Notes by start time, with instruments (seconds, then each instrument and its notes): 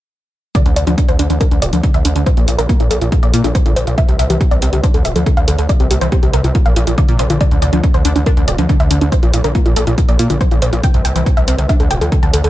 0.55 synth pluck D3 D5, kick, closed hi-hat
0.66 analog synth bass D2, synth pluck A2 D4, closed hi-hat
0.76 analog synth bass D2, synth pluck C3 D5, closed hi-hat
0.87 analog synth bass D2, synth pluck F3 D4, closed hi-hat
0.98 synth pluck D2 D4, kick, closed hi-hat
1.08 analog synth bass D2, synth pluck D3 C5, closed hi-hat
1.19 analog synth bass D2, synth pluck D4, closed hi-hat
1.30 analog synth bass D2, synth pluck E3 D4, closed hi-hat
1.41 synth pluck D4 A#4, kick, closed hi-hat
1.51 analog synth bass D2, synth pluck D4, closed hi-hat
1.62 analog synth bass D1, synth pluck C3 D5, closed hi-hat
1.73 analog synth bass D2, synth pluck F3 D4, closed hi-hat
1.83 synth pluck D3 D4, kick, closed hi-hat
1.94 analog synth bass D2, synth pluck D3 E5, closed hi-hat
2.05 analog synth bass D2, synth pluck D3 D4, closed hi-hat
2.16 analog synth bass D2, synth pluck D3 D4, closed hi-hat
2.26 synth pluck A#2 C5, kick, closed hi-hat
2.37 analog synth bass A#1, synth pluck A#3 F4, closed hi-hat
2.48 analog synth bass A#1, synth pluck A2 F4, closed hi-hat
2.58 analog synth bass A#1, synth pluck D3 A#4, closed hi-hat
2.69 synth pluck A#3 F4, kick, closed hi-hat
2.80 analog synth bass A#1, synth pluck A#2 F4, closed hi-hat
2.91 analog synth bass A#1, synth pluck A#2 A4, closed hi-hat
3.01 analog synth bass A#1, synth pluck A#2 F4, closed hi-hat
3.12 synth pluck A#2 F4, kick, closed hi-hat
3.23 analog synth bass A#1, synth pluck A#3 D5, closed hi-hat
3.33 analog synth bass A#2, synth pluck A#3 F4, closed hi-hat
3.44 analog synth bass A#1, synth pluck D3 F4, closed hi-hat
3.55 synth pluck F3 C5, kick, closed hi-hat
3.66 analog synth bass A#1, synth pluck D3 F4, closed hi-hat
3.76 analog synth bass A#1, synth pluck A#2 C5, closed hi-hat
3.87 analog synth bass A#1, synth pluck A#2 F4, closed hi-hat
3.98 synth pluck C3 E5, kick, closed hi-hat
4.09 analog synth bass C2, synth pluck G2 G4, closed hi-hat
4.19 analog synth bass C2, synth pluck A#2 E5, closed hi-hat
4.30 analog synth bass C2, synth pluck E3 G4, closed hi-hat
4.41 synth pluck C2 G4, kick, closed hi-hat
4.51 analog synth bass C2, synth pluck C3 D5, closed hi-hat
4.62 analog synth bass C2, synth pluck C4 G4, closed hi-hat
4.73 analog synth bass C2, synth pluck D3 G4, closed hi-hat
4.83 synth pluck D4 C5, kick, closed hi-hat
4.94 analog synth bass D2, synth pluck D4 A4, closed hi-hat
5.05 analog synth bass D1, synth pluck C3 E5, closed hi-hat
5.16 analog synth bass D2, synth pluck F3 A4, closed hi-hat
5.26 synth pluck D3 A4, kick, closed hi-hat
5.37 analog synth bass D2, synth pluck D3 F5, closed hi-hat
5.48 analog synth bass D2, synth pluck D3 A4, closed hi-hat
5.59 analog synth bass D2, synth pluck D3 A4, closed hi-hat
5.69 synth pluck C3 D5, kick, closed hi-hat
5.80 analog synth bass C2, synth pluck C4 G4, closed hi-hat
5.91 analog synth bass C2, synth pluck A#2 G4, closed hi-hat
6.01 analog synth bass C2, synth pluck E3 C5, closed hi-hat
6.12 synth pluck C4 G4, kick, closed hi-hat
6.23 analog synth bass C2, synth pluck C3 G4, closed hi-hat
6.33 analog synth bass C2, synth pluck C3 A#4, closed hi-hat
6.44 analog synth bass C2, synth pluck C3 F4, closed hi-hat
6.55 synth pluck A#2 F4, kick, closed hi-hat
6.66 analog synth bass A#1, synth pluck A#3 F5, closed hi-hat
6.76 analog synth bass A#1, synth pluck A2 F4, closed hi-hat
6.87 analog synth bass A#1, synth pluck E3 F4, closed hi-hat
6.98 synth pluck D3 D5, kick, closed hi-hat
7.08 analog synth bass A#2, synth pluck A#3 F4, closed hi-hat
7.19 analog synth bass A#1, synth pluck C3 C5, closed hi-hat
7.30 analog synth bass A#1, synth pluck D3 F4, closed hi-hat
7.41 synth pluck D3 D5, kick, closed hi-hat
7.51 analog synth bass D2, synth pluck A2 D4, closed hi-hat
7.62 analog synth bass D2, synth pluck C3 D5, closed hi-hat
7.73 analog synth bass D2, synth pluck F3 D4, closed hi-hat
7.83 synth pluck D2 D4, kick, closed hi-hat
7.94 analog synth bass D2, synth pluck D3 C5, closed hi-hat
8.05 analog synth bass D2, synth pluck D4, closed hi-hat
8.16 analog synth bass D2, synth pluck E3 D4, closed hi-hat
8.26 synth pluck D4 A#4, kick, closed hi-hat
8.37 analog synth bass D2, synth pluck D4, closed hi-hat
8.48 analog synth bass D1, synth pluck C3 D5, closed hi-hat
8.58 analog synth bass D2, synth pluck F3 D4, closed hi-hat
8.69 synth pluck D3 D4, kick, closed hi-hat
8.80 analog synth bass D2, synth pluck D3 E5, closed hi-hat
8.91 analog synth bass D2, synth pluck D3 D4, closed hi-hat
9.01 analog synth bass D2, synth pluck D3 D4, closed hi-hat
9.12 synth pluck A#2 C5, kick, closed hi-hat
9.23 analog synth bass A#1, synth pluck A#3 F4, closed hi-hat
9.34 analog synth bass A#1, synth pluck A2 F4, closed hi-hat
9.44 analog synth bass A#1, synth pluck D3 A#4, closed hi-hat
9.55 synth pluck A#3 F4, kick, closed hi-hat
9.66 analog synth bass A#1, synth pluck A#2 F4, closed hi-hat
9.76 analog synth bass A#1, synth pluck A#2 A4, closed hi-hat
9.87 analog synth bass A#1, synth pluck A#2 F4, closed hi-hat
9.98 synth pluck A#2 F4, kick, closed hi-hat
10.09 analog synth bass A#1, synth pluck A#3 D5, closed hi-hat
10.19 analog synth bass A#2, synth pluck A#3 F4, closed hi-hat
10.30 analog synth bass A#1, synth pluck D3 F4, closed hi-hat
10.41 synth pluck F3 C5, kick, closed hi-hat
10.51 analog synth bass A#1, synth pluck D3 F4, closed hi-hat
10.62 analog synth bass A#1, synth pluck A#2 C5, closed hi-hat
10.73 analog synth bass A#1, synth pluck A#2 F4, closed hi-hat
10.83 synth pluck C3 G5, kick, closed hi-hat
10.94 analog synth bass C2, synth pluck G2 C5, closed hi-hat
11.05 analog synth bass C2, synth pluck A#2 G5, closed hi-hat
11.16 analog synth bass C2, synth pluck E3 C5, closed hi-hat
11.26 synth pluck C2 C5, kick, closed hi-hat
11.37 analog synth bass C2, synth pluck C3 E5, closed hi-hat
11.48 analog synth bass C2, synth pluck C4 C5, closed hi-hat
11.59 analog synth bass C2, synth pluck D3 C5, closed hi-hat
11.69 synth pluck D4 E5, kick, closed hi-hat
11.80 analog synth bass D2, synth pluck D4 A4, closed hi-hat
11.91 analog synth bass D1, synth pluck C3 G5, closed hi-hat
12.01 analog synth bass D2, synth pluck F3 A4, closed hi-hat
12.12 synth pluck D3 A4, kick, closed hi-hat
12.23 analog synth bass D2, synth pluck D3 A5, closed hi-hat
12.33 analog synth bass D2, synth pluck D3 A4, closed hi-hat
12.44 analog synth bass D2, synth pluck D3 A4, closed hi-hat